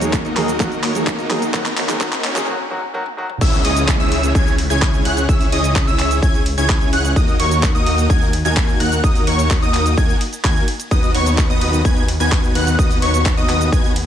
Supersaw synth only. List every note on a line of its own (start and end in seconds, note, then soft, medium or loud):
0.00 0.22 A#3 medium
0.00 0.22 D#4 medium
0.00 0.22 F#4 medium
0.00 0.22 A#4 medium
0.00 0.22 C#5 medium
0.25 0.57 A#3 medium
0.25 0.57 D#4 medium
0.25 0.57 F#4 medium
0.25 0.57 A#4 medium
0.25 0.57 D#5 medium
0.60 0.81 A#3 medium
0.60 0.81 D#4 medium
0.60 0.81 F#4 medium
0.60 0.81 A#4 medium
0.60 0.81 D#5 medium
0.84 1.16 A#3 medium
0.84 1.16 D#4 medium
0.84 1.16 F#4 medium
0.84 1.16 A#4 medium
0.84 1.16 C#5 medium
1.19 1.51 A#3 medium
1.19 1.51 D#4 medium
1.19 1.51 F#4 medium
1.19 1.51 A#4 medium
1.19 1.51 D#5 medium
1.54 1.74 A#3 medium
1.54 1.74 D#4 medium
1.54 1.74 F#4 medium
1.54 1.74 A#4 medium
1.54 1.74 D#5 medium
1.77 1.99 A#3 medium
1.77 1.99 D#4 medium
1.77 1.99 F#4 medium
1.77 1.99 A#4 medium
1.77 1.99 C#5 medium
2.01 2.21 A#3 medium
2.01 2.21 D#4 medium
2.01 2.21 F#4 medium
2.01 2.21 A#4 medium
2.01 2.21 D#5 medium
2.24 2.46 A#3 medium
2.24 2.46 D#4 medium
2.24 2.46 F#4 medium
2.24 2.46 A#4 medium
2.24 2.46 C#5 medium
3.41 3.62 C#4 medium
3.41 3.62 E4 medium
3.41 3.62 G#4 medium
3.41 3.62 C#5 medium
3.41 3.62 E5 medium
3.65 3.97 C#4 medium
3.65 3.97 E4 medium
3.65 3.97 G#4 medium
3.65 3.97 C#5 medium
3.65 3.97 D#5 medium
4.00 4.32 C#4 medium
4.00 4.32 E4 medium
4.00 4.32 G#4 medium
4.00 4.32 C#5 medium
4.00 4.32 E5 loud
4.35 4.54 C#4 loud
4.35 4.54 E4 medium
4.35 4.54 G#4 medium
4.35 4.54 C#5 medium
4.35 4.54 G#5 loud
4.70 5.02 C#4 medium
4.70 5.03 E4 medium
4.70 5.02 G#4 medium
4.70 5.03 C#5 medium
4.70 5.03 G#5 loud
5.05 5.26 C#4 medium
5.05 5.26 E4 medium
5.05 5.26 G#4 medium
5.05 5.26 C#5 medium
5.05 5.26 F#5 medium
5.29 5.49 C#4 medium
5.29 5.49 E4 medium
5.29 5.49 G#4 medium
5.29 5.49 C#5 medium
5.29 5.49 E5 medium
5.52 5.84 C#4 medium
5.52 5.84 E4 medium
5.52 5.84 G#4 medium
5.52 5.84 C#5 medium
5.52 5.84 D#5 medium
5.87 6.20 C#4 medium
5.87 6.20 E4 medium
5.87 6.20 G#4 medium
5.87 6.20 C#5 medium
5.87 6.20 E5 medium
6.22 6.41 C#4 loud
6.22 6.41 E4 medium
6.22 6.41 G#4 medium
6.22 6.41 C#5 medium
6.22 6.41 G#5 loud
6.58 6.90 C#4 medium
6.58 6.90 E4 medium
6.58 6.90 G#4 medium
6.58 6.90 C#5 medium
6.58 6.90 G#5 loud
6.93 7.13 C#4 medium
6.93 7.13 E4 medium
6.93 7.13 G#4 medium
6.93 7.13 C#5 medium
6.93 7.13 F#5 medium
7.16 7.37 A#3 medium
7.16 7.37 D#4 medium
7.16 7.37 F#4 medium
7.16 7.37 A#4 medium
7.16 7.37 D#5 medium
7.40 7.72 A#3 medium
7.40 7.72 D#4 medium
7.40 7.72 F#4 medium
7.40 7.72 A#4 medium
7.40 7.72 C#5 medium
7.75 8.07 A#3 medium
7.75 8.07 D#4 medium
7.75 8.07 F#4 medium
7.75 8.07 A#4 medium
7.75 8.07 D#5 loud
8.10 8.29 A#3 loud
8.10 8.29 D#4 medium
8.10 8.29 F#4 medium
8.10 8.29 A#4 loud
8.10 8.29 G#5 loud
8.45 8.77 A#3 medium
8.45 8.77 D#4 medium
8.45 8.77 F#4 medium
8.45 8.77 A#4 medium
8.45 8.77 G#5 loud
8.80 9.01 A#3 medium
8.80 9.01 D#4 medium
8.80 9.01 F#4 medium
8.80 9.01 A#4 medium
8.80 9.01 F#5 medium
9.04 9.24 A#3 medium
9.04 9.24 D#4 medium
9.04 9.24 F#4 medium
9.04 9.24 A#4 medium
9.04 9.24 D#5 medium
9.27 9.59 A#3 medium
9.27 9.59 D#4 medium
9.27 9.59 F#4 medium
9.27 9.59 A#4 medium
9.27 9.59 C#5 medium
9.62 9.95 A#3 medium
9.62 9.95 D#4 medium
9.62 9.95 F#4 medium
9.62 9.95 A#4 medium
9.62 9.95 D#5 medium
9.97 10.16 A#3 loud
9.97 10.16 D#4 medium
9.97 10.16 F#4 medium
9.97 10.16 A#4 medium
9.97 10.16 G#5 loud
10.44 10.63 A#3 loud
10.44 10.63 D#4 medium
10.44 10.63 F#4 loud
10.44 10.63 A#4 medium
10.44 10.63 G#5 loud
10.91 11.12 B3 medium
10.91 11.12 D#4 medium
10.91 11.12 F#4 medium
10.91 11.12 B4 medium
10.91 11.12 D#5 medium
11.15 11.47 B3 medium
11.15 11.47 D#4 medium
11.15 11.47 F#4 medium
11.15 11.47 B4 medium
11.15 11.47 C#5 medium
11.50 11.82 B3 medium
11.50 11.82 D#4 medium
11.50 11.82 F#4 medium
11.50 11.82 B4 medium
11.50 11.82 D#5 medium
11.85 12.04 B3 loud
11.85 12.04 D#4 loud
11.85 12.04 F#4 medium
11.85 12.04 B4 medium
11.85 12.04 G#5 loud
12.20 12.52 B3 medium
12.20 12.52 D#4 medium
12.20 12.52 F#4 medium
12.20 12.52 B4 medium
12.20 12.52 G#5 loud
12.55 12.76 B3 medium
12.55 12.76 D#4 medium
12.55 12.76 F#4 medium
12.55 12.76 B4 medium
12.55 12.76 F#5 medium
12.79 12.99 B3 medium
12.79 12.99 D#4 medium
12.79 12.99 F#4 medium
12.79 12.99 B4 medium
12.79 12.99 D#5 medium
13.02 13.34 B3 medium
13.02 13.34 D#4 medium
13.02 13.34 F#4 medium
13.02 13.34 B4 medium
13.02 13.34 C#5 medium
13.37 13.70 B3 medium
13.37 13.70 D#4 medium
13.37 13.70 F#4 medium
13.37 13.70 B4 medium
13.37 13.70 D#5 loud
13.72 13.91 B3 loud
13.72 13.91 D#4 medium
13.72 13.91 F#4 medium
13.72 13.91 B4 medium
13.72 13.91 G#5 loud